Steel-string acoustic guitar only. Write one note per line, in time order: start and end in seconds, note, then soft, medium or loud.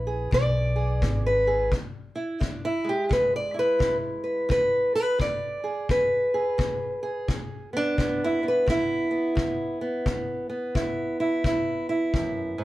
0.00 0.27 E2 medium
0.00 1.48 B3 soft
0.00 0.32 B4 soft
0.07 0.75 G#4 soft
0.31 0.96 E2 medium
0.31 1.26 D5 medium
0.76 1.46 G#4 soft
1.03 1.67 E2 medium
1.26 1.72 B4 medium
1.47 1.69 G#4 soft
1.72 2.36 E2 medium
2.15 2.42 E4 soft
2.40 3.05 E2 medium
2.40 2.65 D4 medium
2.65 2.88 E4 medium
2.84 5.24 G#3 soft
2.89 3.12 G4 medium
3.09 3.74 E2 medium
3.09 3.35 B4 medium
3.36 3.58 D5 medium
3.54 5.24 E4 soft
3.59 3.96 B4 medium
3.79 4.44 E2 medium
4.24 4.51 B4 soft
4.49 5.14 E2 medium
4.49 4.94 B4 medium
4.95 5.20 B4 medium
5.18 5.83 E2 medium
5.18 5.90 D5 medium
5.64 6.34 G#4 soft
5.90 6.54 E2 medium
5.90 7.29 B4 medium
6.34 7.02 G#4 soft
6.58 7.23 E2 medium
7.03 7.73 G#4 soft
7.28 7.92 E2 medium
7.73 7.98 B3 soft
7.73 8.22 D4 loud
7.98 8.62 E2 medium
7.98 8.43 B3 soft
8.24 8.46 E4 medium
8.43 9.10 B3 soft
8.48 8.69 B4 medium
8.66 9.31 E2 medium
8.66 10.07 E4 loud
9.11 9.80 B3 soft
9.35 10.00 E2 medium
9.81 10.48 B3 soft
10.06 10.70 E2 medium
10.50 12.64 B3 medium
10.75 11.39 E2 medium
10.75 11.20 E4 medium
11.20 11.45 E4 medium
11.45 12.09 E2 medium
11.45 11.89 E4 medium
11.89 12.64 E4 medium
12.14 12.58 F#2 medium
12.58 12.64 G#2 medium